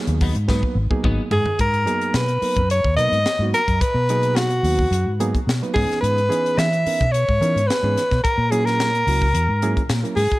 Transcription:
Already playing: F#3 A#3 B3 D#4 G#4
0.07 D#2, muted clean electric guitar stroke, closed hi-hat
0.21 F#3 B3 D#4, kick, open hi-hat
0.35 G#2, muted clean electric guitar stroke, closed hi-hat
0.48 F#3 A#3 B3 D#4 B4, kick, snare
0.63 muted clean electric guitar stroke, kick
0.75 G#1
0.90 F#3 A#3 B3 D#4 G#4, muted clean electric guitar stroke, kick
1.04 G#1 F#3 B3 D#4, kick
1.31 G#2 G#4, muted clean electric guitar stroke, floor tom
1.46 D#4 A#4, muted clean electric guitar stroke, floor tom
1.59 G#2 A#4, kick, closed hi-hat
1.74 closed hi-hat
1.86 F#3 A#3 B3 D#4 G#4, closed hi-hat
2.01 closed hi-hat
2.14 B2 B4, snare, closed hi-hat
2.28 closed hi-hat
2.41 F#3 A#3 B3 D#4 A#4, muted fingered electric bass stroke, open hi-hat
2.56 F#2, kick, closed hi-hat
2.70 D#4 G#4 C#5, closed hi-hat
2.84 D#2, kick
2.96 B2 F#3 A#3 B3 D#4 A#4 D#5, closed hi-hat
3.12 G#2, closed hi-hat
3.26 D#4 A#4, snare, closed hi-hat
3.39 G#2 F#3 A#3 B3 D#4 F#4
3.54 A#4, closed hi-hat
3.68 F#2 D#4 A#4, kick, closed hi-hat
3.81 B4, muted fingered electric bass stroke, kick, closed hi-hat
3.94 B2
4.09 F#3 A#3 B3 D#4 G#4, closed hi-hat
4.23 closed hi-hat
4.36 F#4, snare, closed hi-hat
4.50 closed hi-hat
4.63 D#2 F#3 A#3 B3 D#4 F#4, open hi-hat
4.79 kick
4.91 F#2 D#4 G#4, closed hi-hat
5.06 G#2
5.20 F#3 A#3 B3 D#4 G#4, closed hi-hat
5.35 kick, closed hi-hat
5.47 B2 D#4 F#4, snare, closed hi-hat
5.62 F#3 A#3 B3 D#4 B4, closed hi-hat
5.74 G#2 E3 B3 C#4 D#4 G#4, kick, open hi-hat
5.91 snare, closed hi-hat
6.01 G#2 B4, closed hi-hat
6.18 closed hi-hat
6.29 E3 B3 C#4 D#4 G#4, closed hi-hat
6.46 closed hi-hat
6.58 E3 E5, snare, closed hi-hat
6.73 closed hi-hat
6.86 E3 B3 C#4 D#4 A#4, muted fingered electric bass stroke, open hi-hat
7.01 B2, kick
7.12 D#4 B4 C#5, closed hi-hat
7.28 G#2, kick
7.41 E3 B3 C#4 D#4 A#4, closed hi-hat
7.56 G#2, closed hi-hat
7.67 D#4 G#4 B4, snare, closed hi-hat
7.83 G#2 E3 B3 C#4 D#4 G#4
7.97 snare, closed hi-hat
8.11 B2 D#4 B4, kick, snare, closed hi-hat
8.24 A#4, muted fingered electric bass stroke, kick, closed hi-hat
8.38 A#2
8.51 F#3 A#3 C#4 E4 G#4, closed hi-hat
8.65 A#4, snare, closed hi-hat
8.80 snare, closed hi-hat
8.95 closed hi-hat
9.07 C#2 F#3 A#3 C#4 E4 F#4, open hi-hat
9.22 kick
9.34 E2 E4 F#4, closed hi-hat
9.48 G#2
9.62 F#3 A#3 C#4 E4 G#4, closed hi-hat
9.77 kick, closed hi-hat
9.89 A#2 E4 G#4, snare, closed hi-hat
10.03 F#3 A#3 C#4 E4 A#4, closed hi-hat
10.16 G#2 G#4, open hi-hat
10.31 E4 F#4, muted fingered electric bass stroke, kick, closed hi-hat

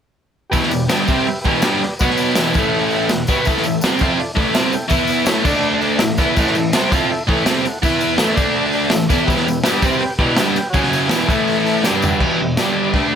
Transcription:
0.50 E2 B2 G4 B4 E5, kick, tambourine
0.54 E3, open hi-hat
0.63 snare
0.69 E2 B2 G4 B4 D5, open hi-hat, tambourine
0.86 G2 D3 G3 G4 B4 E5, snare, open hi-hat, tambourine
1.06 C3 G3 C4 G4 B4 G5, kick, open hi-hat, tambourine
1.24 G4 B4 E5, muted overdriven electric guitar stroke, open hi-hat
1.41 E2 G4 B4 E5, tambourine
1.45 B2 E3, kick, open hi-hat
1.61 G2 D3 G3 G4 B4 F#5, snare, open hi-hat, tambourine
1.79 G4 B4 D5, muted overdriven electric guitar stroke, snare
1.83 open hi-hat
1.99 B2 F#3 B3 F#4 B4 F#5, kick, open hi-hat, tambourine
2.10 snare
2.18 F#4 B4 A5, open hi-hat, tambourine
2.35 E2 B2 E3 G4 B4 E5, snare, open hi-hat, tambourine
2.54 A2 E3 A3 E4 A4 E5, kick, open hi-hat, tambourine
2.74 open hi-hat
2.90 E4 A4 G5, open hi-hat, tambourine
2.95 E5
3.09 E2 B2 G4 B4 E5 F#5, snare, open hi-hat, tambourine
3.27 B2 F#3 B3 G4 B4 E5, kick, open hi-hat, tambourine
3.45 A2 E3 A3 E4 A4 E5, kick, open hi-hat, tambourine
3.57 snare
3.63 A2 E3 E4 A4 E5, open hi-hat, tambourine
3.80 E4 A4 F#5, tambourine
3.84 C3 G3 C4, snare, open hi-hat
3.99 F3 C4 E4 F4 A4 E5, kick, open hi-hat, tambourine
4.18 E4 A4 D5, muted overdriven electric guitar stroke, open hi-hat
4.34 A2 E3 A3 E4 A4 D5, kick, open hi-hat, tambourine
4.54 C3 G3 C4 E4 A4 E5, snare, open hi-hat, tambourine
4.72 E4 A4 G5, muted overdriven electric guitar stroke, open hi-hat, tambourine
4.88 E3 B3 E4 B4 E5, kick, open hi-hat, tambourine
5.07 E4, open hi-hat, tambourine
5.12 B4 E5
5.26 A2 E3 A3 E4 A4 E5, snare, open hi-hat, tambourine
5.44 D3 A3 D4 A4 D5, kick, tambourine, crash
5.63 tambourine
5.81 D4 A4 D5, open hi-hat, tambourine
5.97 A2 E4 A4 E5, snare, open hi-hat, tambourine
6.01 E3
6.17 E3 B3 E4 A4 E5, kick, snare, open hi-hat, tambourine
6.35 A2 E3 A3 E4 A4 F#5, kick, tambourine, crash
6.47 snare
6.55 A2 E3 E4 A4 E5, open hi-hat, tambourine
6.73 C3 G3 C4 E4 A4 F#5, snare, open hi-hat, tambourine
6.91 F3 C4 E4 F4 E5, kick, open hi-hat, tambourine
6.97 A4
7.10 E4 A4 E5, muted overdriven electric guitar stroke, open hi-hat
7.27 A2 E3 A3, kick, open hi-hat, tambourine
7.32 E4 A4 E5
7.45 C3 G3 C4, snare, open hi-hat, tambourine
7.50 E4 A4 E5
7.65 E4 A4 F#5, muted overdriven electric guitar stroke, open hi-hat, tambourine
7.83 E3 B3 E4 B4 E5, kick, open hi-hat, tambourine
8.01 E4 B4 E5, open hi-hat, tambourine
8.17 A2 E3 A3 E4 A4 E5, snare, open hi-hat, tambourine
8.35 D3 A3 D4 A4 D5, kick, open hi-hat, tambourine
8.56 open hi-hat
8.72 D4 A4 D5, open hi-hat, tambourine
8.90 A2 E3 E4 A4, snare, open hi-hat, tambourine
8.95 E5
9.09 E3 B3 E4 A4 D5, kick, snare, open hi-hat, tambourine
9.26 E2 B2 E3 G4 B4 E5, kick, open hi-hat
9.30 tambourine
9.37 snare
9.44 E2 B2 G4 B4 E5, open hi-hat, tambourine
9.63 G2 D3 G3 G4 B4 F#5, snare, open hi-hat, tambourine
9.81 C3 G3 C4 G4 B4 E5, kick, open hi-hat, tambourine
9.99 G4 B4 G5, muted overdriven electric guitar stroke, open hi-hat
10.18 E2 B2 E3 G4 B4 D5, kick, open hi-hat, tambourine
10.36 G2 D3 G3 G4 B4 F#5, snare, open hi-hat, tambourine
10.53 G4 B4 G5, snare, open hi-hat, tambourine
10.57 muted overdriven electric guitar stroke
10.69 F#4 C#5 F#5
10.74 F#2 C#3 F#3, kick, open hi-hat, tambourine
10.83 snare
10.88 F#4 C#5 E5
10.93 open hi-hat, tambourine
11.05 E2 G4 B4 E5, snare
11.10 B2 E3, open hi-hat, tambourine
11.26 A2 E3 E4 A4 E5, kick, open hi-hat
11.30 A3, tambourine
11.47 open hi-hat, tambourine
11.64 E4 A4 E5 A5, open hi-hat, tambourine
11.81 G2 D3 G3 D4 G4 D5 G5, snare, tambourine
11.90 F#5
11.99 D4 G4 E5, tambourine
12.04 floor tom
12.17 E2 B2 E4 G4 B4, kick, crash
12.22 E3
12.34 E4 G4 B4
12.41 E2 B2
12.55 G2 D4 G4 D5, snare, open hi-hat, tambourine
12.59 D3 G3
12.74 D4 G4 D5
12.93 D3 A3 D4 G4 B4 E5, kick, open hi-hat

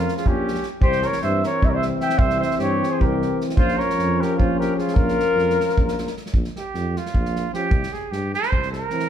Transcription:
Already playing: F3 C#4 F4 A#4
0.08 snare
0.17 F4 G#4, snare
0.26 A#1 C#4 G4, kick
0.48 snare
0.55 snare
0.63 snare
0.80 C2 E3 C4 G4 C5, kick
0.92 snare
1.02 A#4 C#5, snare
1.12 snare
1.21 G2 C5 E5, snare
1.43 A#4 C#5, snare
1.62 C2 C5 E5, kick
1.68 A#4 C#5
1.74 C5 E5
1.82 snare
2.00 E5 G5, snare
2.09 snare
2.18 C2 C5 E5, kick
2.30 snare
2.40 C5 E5, snare
2.51 snare
2.58 G2 G4 C#5, snare
2.83 snare
2.89 G#4 C5
3.00 C2 G4 A#4, kick
3.22 snare
3.41 snare
3.49 snare
3.56 A#1 F3 C#4 F4 C5, kick
3.68 snare
3.78 A#4 C#5, snare
3.90 snare
3.98 F2, snare
4.20 G4 A#4, snare
4.37 A#1 F4 C5, kick
4.59 G4 A#4, snare
4.76 F4 G#4, snare
4.88 snare
4.94 A#1 F4 A#4, kick
5.08 snare
5.20 snare
5.35 F2, snare
5.50 snare
5.60 snare
5.69 snare
5.76 A#1, kick
5.88 snare
5.98 snare
6.07 snare
6.17 snare
6.26 snare
6.33 A#1, kick
6.44 snare
6.56 G4, snare
6.74 F2, snare
6.96 F4, snare
7.06 snare
7.14 A#1, kick
7.25 snare
7.36 snare
7.52 F3 C#4 G4, snare
7.70 C2, kick
7.83 snare
7.93 G#4, snare
8.11 G2 G4, snare
8.34 C5, snare
8.43 snare
8.52 C2, kick
8.62 snare
8.71 A#4, snare
8.90 E3 C4, snare
8.99 snare

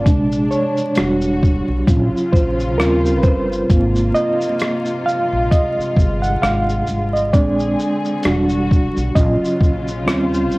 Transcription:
Already playing: C3 D5
0.06 A#1 C3 G#3 D4, kick, closed hi-hat, shaker
0.32 shaker
0.51 C#5, shaker
0.77 shaker
0.96 E1 D3 G3 D4 F#4, cross-stick, closed hi-hat, shaker
1.22 shaker
1.43 kick, shaker
1.69 B1
1.88 A#1 C#3 F#3 C#4 F4, kick, closed hi-hat, shaker
2.14 muted upright bass stroke, shaker
2.32 A#1 C5, kick, shaker
2.60 shaker
2.78 D#2 G3 C4 C#4 F4 A#4 C5, cross-stick, closed hi-hat, shaker
3.06 shaker
3.17 B4
3.23 G1 C5, kick, shaker
3.52 shaker
3.69 G#1 C3 A#3 C4 F4, kick, closed hi-hat, shaker
3.95 shaker
4.14 D#5, shaker
4.41 shaker
4.59 cross-stick, closed hi-hat, shaker
4.85 shaker
5.06 F5, shaker
5.33 A#1
5.51 G#3 D#5, kick, closed hi-hat, shaker
5.78 muted upright bass stroke, shaker
5.97 G1, kick, shaker
6.22 F#5, shaker
6.42 G#1 F5, cross-stick, closed hi-hat, shaker
6.70 shaker
6.87 G#1, shaker
7.13 D#5, shaker
7.33 A#1 D3 G#3 C4 D4 G#4 D5, kick, closed hi-hat, shaker
7.59 shaker
7.79 shaker
8.05 shaker
8.23 E1 G3 D4 F#4, cross-stick, closed hi-hat, shaker
8.49 shaker
8.71 kick, shaker
8.96 B1, shaker
9.15 A#1 C#3 F#3 C#4 F4 D#5, kick, closed hi-hat, shaker
9.42 muted upright bass stroke, shaker
9.61 A#1, kick, shaker
9.88 shaker
10.06 D#2 G3 C4 C#4 F4 C5, cross-stick, closed hi-hat, shaker
10.34 shaker
10.51 G1, shaker

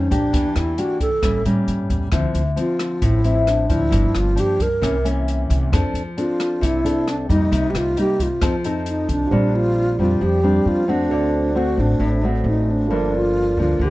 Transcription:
Already playing: F2 C#4
0.11 A#1 A#3 D4 G4, kick, closed hi-hat
0.33 E2 E3, kick, closed hi-hat
0.56 E2 E4, cross-stick, closed hi-hat
0.78 A#3 D4 F#4 G4, closed hi-hat
1.00 A4, kick, closed hi-hat
1.22 A1 A2 G3 A#3 C#4, kick, cross-stick, closed hi-hat
1.45 A2 G3 A#3 C#4, closed hi-hat
1.67 G2, closed hi-hat
1.90 E2, kick, closed hi-hat
2.12 D2 D3 F3 C4 E4, kick, cross-stick, closed hi-hat
2.34 D2, closed hi-hat
2.56 F3 C4 F4, closed hi-hat
2.79 cross-stick, closed hi-hat
3.02 A1 A2 E4, kick, closed hi-hat
3.24 F3 C4 E4, closed hi-hat
3.47 D4, cross-stick, closed hi-hat
3.69 D2 F3 A#3 D4 E4, kick, closed hi-hat
3.91 G1 G2, kick, closed hi-hat
4.15 G1 F4, cross-stick, closed hi-hat
4.35 F3 A#3 D4, closed hi-hat
4.40 G4
4.60 A#4, kick, closed hi-hat
4.82 C2 C3 E3 A#3 C#4, kick, cross-stick, closed hi-hat
5.04 E3 A#3 C#4, closed hi-hat
5.28 closed hi-hat
5.50 C2, kick, closed hi-hat
5.72 F2 F3 C4 D4 A4, kick, cross-stick, closed hi-hat
5.93 F2, closed hi-hat
6.17 C4 D4 F4 A4, closed hi-hat
6.40 cross-stick, closed hi-hat
6.61 C2 C3 E4, kick, closed hi-hat
6.85 C4 D4 A4, closed hi-hat
7.08 D4, cross-stick, closed hi-hat
7.29 F2 G3 A#3 D#4, kick, closed hi-hat
7.52 C2 C3, kick, closed hi-hat
7.70 C2 G4
7.75 F4, cross-stick, closed hi-hat
7.97 G3 A#3 D#4 G4, closed hi-hat
8.20 F4, kick, closed hi-hat
8.41 F2 F3 C4 D#4 A4, kick, cross-stick, closed hi-hat
8.64 C4 D#4 A4, closed hi-hat
8.86 D#4, closed hi-hat
9.08 C2 D4, kick, closed hi-hat
9.27 F4 G4
9.31 A#1 A#2 G3 C4 D4 C5 D5
9.56 F4
9.99 F2 G3 C4 D4 F4
10.21 F2 F3 G4
10.43 G3 C4 D4
10.65 F2 F4
10.88 A3 C4 D4 F#4
11.08 D2 D3 F#4 A4 C5
11.14 D5
11.55 A3 C4 F#4
11.77 A1 D4
11.99 A1 A2
12.24 A3 C4 F#4
12.44 A1 D#4
12.71 D4
12.88 G1 G2 F3 A#3 D4 F4 A4 A#4
12.94 D5
13.15 F4
13.57 D2 F3 A#3 D4 F4
13.79 D2 D3
13.84 G4

